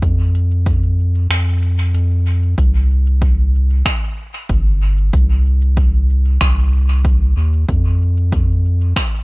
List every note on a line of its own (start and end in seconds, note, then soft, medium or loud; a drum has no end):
0.02 1.27 F2 loud
0.02 kick medium
0.02 closed hi-hat medium
0.35 closed hi-hat soft
0.66 kick loud
0.66 closed hi-hat soft
1.30 1.93 F2 loud
1.30 finger snap medium
1.30 closed hi-hat soft
1.63 closed hi-hat soft
1.94 2.55 F2 medium
1.94 closed hi-hat medium
2.27 closed hi-hat soft
2.58 3.83 C2 medium
2.58 kick loud
2.58 closed hi-hat medium
3.22 kick loud
3.22 closed hi-hat medium
3.86 finger snap medium
3.86 kick loud
3.86 closed hi-hat medium
4.49 5.10 G1 medium
4.49 kick loud
4.49 closed hi-hat medium
5.13 6.38 C2 loud
5.13 kick loud
5.13 closed hi-hat medium
5.77 kick loud
5.77 closed hi-hat medium
6.41 7.34 C2 loud
6.41 finger snap medium
6.41 kick loud
6.41 closed hi-hat medium
7.05 kick loud
7.05 closed hi-hat medium
7.37 7.65 D#2 medium
7.69 8.93 F2 loud
7.69 kick loud
7.69 closed hi-hat medium
8.32 kick loud
8.32 closed hi-hat medium
8.96 finger snap medium
8.96 kick loud
8.96 closed hi-hat medium